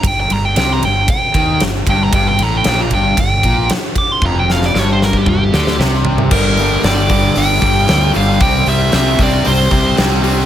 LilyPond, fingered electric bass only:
\new Staff \with { instrumentName = "Fingered electric bass" } { \clef bass \time 4/4 \key g \minor \tempo 4 = 115 g,,8 g,,8 c,8 g,,8 r8 ees,8 g,,8 g,,8 | g,,8 a,,8 bes,,8 g,,8 g,,8 bes,,8 r4 | f,,4 g,,4. d,8 c,4 | g,,4 g,,4 g,,8 g,,8 d,8 g,,8 |
c,8 c,8 c,8 c,8 c,8 c,8 c,4 | }